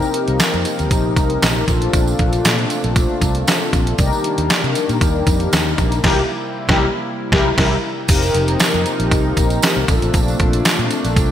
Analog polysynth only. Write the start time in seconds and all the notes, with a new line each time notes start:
Already playing: C4 D#4 G4 A#4
1.67 C4 F4 A4
3.98 D4 D#4 G4 A#4
6.04 E4 G4 A#4
6.69 E4 G4 A#4
7.32 E4 G4 A#4
7.57 E4 G4 A#4
8.08 C4 D#4 G4 A#4
9.87 C4 D4 F4 A4